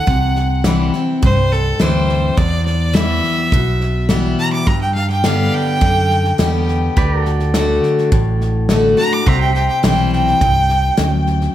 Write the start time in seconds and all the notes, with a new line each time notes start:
Already playing: F#5
0.07 C2 C3, kick, snare
0.36 snare
0.64 E3 G3 C4 E4, snare, hi-hat pedal
0.94 C4 E4, snare
1.22 C2 G2 C5, kick, snare
1.52 A4, snare
1.79 D2 E3 G3 C4 E4 C5, snare, hi-hat pedal
2.09 snare
2.37 E2 D5, kick, snare
2.66 D5, snare
2.94 E3 G3 B3 E4 E5, snare, hi-hat pedal
3.24 snare
3.52 B1 B2, kick, snare
3.81 snare
4.09 E3 G3 B3 E4, snare, hi-hat pedal
4.38 A#5, snare
4.53 D6, snare
4.66 G2 A#5, kick, snare
4.81 G5
4.95 F5, snare
5.09 G5, snare
5.24 D3 G3 B3 G4 F5, snare, hi-hat pedal
5.53 G5, snare
5.81 F#2 D3, kick, snare
6.10 snare
6.25 snare
6.38 E2 D3 G3 B3 G4, snare, hi-hat pedal
6.68 snare
6.97 D2 D3 G4 B4 D5, kick, snare
7.17 F#4
7.23 A4, snare
7.40 snare
7.54 D3 A3 D4 F#4, snare, hi-hat pedal
7.83 snare
7.98 snare
8.12 A1 A2, kick, snare
8.41 snare
8.69 D3 A3 D4 F#4, snare, hi-hat pedal
8.97 D4 F#4 A#5, snare
9.13 D6
9.26 C2 C3 F#4 C5 E5 A#5, kick, snare
9.41 G5
9.46 G4
9.54 G5, snare
9.68 G5
9.83 B1 E3 G3 C4 E4 G5, snare, hi-hat pedal
10.12 G5, snare
10.27 snare
10.41 C2 G2, kick, snare
10.69 snare
10.97 D2 F#2, snare, hi-hat pedal
11.27 snare
11.41 snare